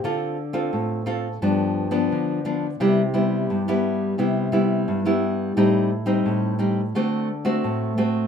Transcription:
\new Staff \with { instrumentName = "Nylon-string guitar" } { \time 4/4 \key c \dorian \tempo 4 = 87 << { <c' f' a'>8 r16 <c' f' a'>8. <c' f' a'>16 r16 <f b d'>8. <f b d'>8. <f b d'>16 r16 | <g b e'>16 r16 <g b e'>8. <g b e'>8. <g b e'>8 <g b e'>8. <g b e'>8. | <g c' ees'>8 r16 <g c' ees'>8. <g c' ees'>16 r16 <a c' fis'>8 r16 <a c' fis'>8. <a c' fis'>8 | } \\ { d4 a,4 g,4 d4 | c4 g,4 c4 g,4 | a,4 a,4 d4 a,4 | } >> }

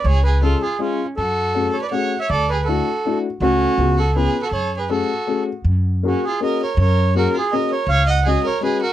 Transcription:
<<
  \new Staff \with { instrumentName = "Bandoneon" } { \time 3/4 \key fis \minor \tempo 4 = 162 cis''8 b'8 a'8 gis'8 eis'8. r16 | a'4. cis''16 d''16 fis''8. e''16 | d''8 b'8 a'4. r8 | fis'4. a'8 b'8. a'16 |
\tuplet 3/2 { cis''4 b'8 } a'4. r8 | \key fis \major r4 fis'8 gis'8 dis''8 cis''8 | cis''4 ais'8 gis'8 dis''8 cis''8 | eis''8 fis''8 dis''8 cis''8 b'8 ais'8 | }
  \new Staff \with { instrumentName = "Violin" } { \time 3/4 \key fis \minor gis'8 gis'8 eis'8 eis'8 cis'8. r16 | fis'4. a'16 b'16 cis''8. cis''16 | a'8 gis'8 fis'4. r8 | cis'4. fis'8 gis'8. fis'16 |
\tuplet 3/2 { a'4 gis'8 } fis'4. r8 | \key fis \major r4 cis'8 eis'8 ais'8 ais'8 | ais'4 fis'8 eis'8 ais'8 ais'8 | cis''8 dis''8 gis'8 ais'8 gis'8 fis'8 | }
  \new Staff \with { instrumentName = "Upright piano" } { \time 3/4 \key fis \minor r4 <gis cis' eis' gis'>8 r8 <gis cis' eis' gis'>8 r8 | r4 <a cis' fis' gis'>8 r8 <a cis' fis' gis'>8 r8 | r4 <a d' e' fis'>8 r8 <a d' e' fis'>8 r8 | <a cis' fis' a'>4 <b cis' eis' gis'>8 r8 <b cis' eis' gis'>8 r8 |
r4 <a cis' fis' gis'>8 r8 <a cis' fis' gis'>8 r8 | \key fis \major r4 <ais cis' fis' gis'>8 r8 <ais cis' fis' gis'>8 r8 | r4 <ais cis' fis' gis'>8 r8 <ais cis' fis' gis'>8 r8 | r4 <gis cis' fis' gis'>8 r8 <gis cis' fis' gis'>8 r8 | }
  \new Staff \with { instrumentName = "Upright bass" } { \clef bass \time 3/4 \key fis \minor cis,2 r4 | fis,2 r4 | d,2 r4 | cis,4 cis,2 |
fis,2 r4 | \key fis \major fis,2 r4 | fis,2 r4 | cis,2 r4 | }
>>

